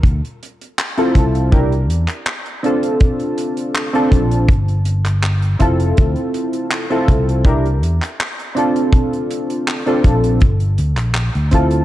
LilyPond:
<<
  \new Staff \with { instrumentName = "Synth keys" } { \time 4/4 \key d \minor \tempo 4 = 81 r4 r16 <c' e' f' a'>8. <d' e' g' bes'>16 r4 r16 <c' d' f' a'>8~ | <c' d' f' a'>4~ <c' d' f' a'>16 <c' d' f' a'>8. r4. <c' e' f' a'>8~ | <c' e' f' a'>4~ <c' e' f' a'>16 <c' e' f' a'>8. <d' e' g' bes'>16 r4 r16 <c' d' f' a'>8~ | <c' d' f' a'>4~ <c' d' f' a'>16 <c' d' f' a'>8. r4. <c' e' f' a'>8 | }
  \new Staff \with { instrumentName = "Fingered electric bass" } { \clef bass \time 4/4 \key d \minor d,16 r4 r16 c,4 e,16 r4 r16 | r4. bes,,8 g,,4. f,,8 | d,16 r4 r16 c,4 e,16 r4 r16 | r4. bes,,8 g,,8 d,16 bes,,8 d,8. | }
  \new DrumStaff \with { instrumentName = "Drums" } \drummode { \time 4/4 <hh bd>16 hh16 hh16 hh16 <hc hh>16 hh16 <hh bd>16 hh16 <hh bd>16 hh16 hh16 <hc hh>16 <hc hh>16 hh16 hh16 hh16 | <hh bd>16 hh16 hh16 hh16 <hc hh>16 hh16 <hh bd>16 hh16 <hh bd>16 hh16 hh16 <hc hh>16 <hc hh>16 hh16 <hh bd>16 hh16 | <hh bd>16 hh16 hh16 hh16 <hc hh>16 hh16 <hh bd>16 hh16 <hh bd>16 hh16 hh16 <hc hh>16 <hc hh>16 hh16 hh16 hh16 | <hh bd>16 hh16 hh16 hh16 <hc hh>16 hh16 <hh bd>16 hh16 <hh bd>16 hh16 hh16 <hc hh>16 <hc hh>16 hh16 <hh bd>16 hh16 | }
>>